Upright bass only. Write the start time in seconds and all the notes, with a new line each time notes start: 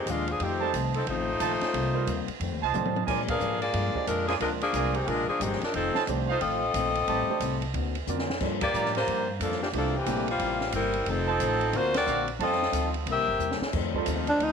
0.06 D#2
0.40 F2
0.73 C2
1.07 A1
1.40 A#1
1.61 muted upright bass stroke
1.74 C2
2.07 D#2
2.28 muted upright bass stroke
2.40 F2
2.51 D#2
2.63 C2
2.73 A2
3.07 A#2
3.40 G#2
3.74 G2
3.95 muted upright bass stroke
4.07 F2
4.40 D2
4.73 C2
5.07 A#1
5.28 muted upright bass stroke
5.40 G1
5.61 muted upright bass stroke
5.74 F1
5.95 muted upright bass stroke
6.07 C2
6.41 A1
6.74 A#1
7.08 A1
7.29 muted upright bass stroke
7.40 C2
7.74 D2
8.07 F2
8.40 G2
8.73 A2
9.07 G2
9.40 F2
9.73 C2
10.06 A#1
10.40 A1
10.73 G1
11.06 F1
11.40 A1
11.73 D2
12.07 A#1
12.39 F2
12.72 D2
13.06 C2
13.17 A#1
13.28 G1
13.39 E2
13.61 muted upright bass stroke
13.73 F2
14.06 D#2
14.39 D2